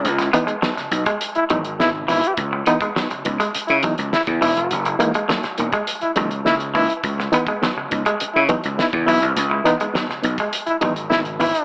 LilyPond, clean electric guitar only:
\new Staff \with { instrumentName = "Clean electric guitar" } { \clef bass \time 4/4 \key cis \dorian \tempo 4 = 103 r8 b16 gis16 fis16 r8 gis16 r8 fis16 r8. e16 r16 | r8 b16 gis16 fis16 r8 gis16 r8 fis16 r8. e16 r16 | r8 ais16 gis16 fis16 r8 gis16 r8 fis16 r8. e16 r16 | r8 b16 gis16 fis16 r8 gis16 r8 fis16 r8. e16 r16 |
r8 b16 gis16 fis16 r8 gis16 r8 fis16 r8. e16 r16 | }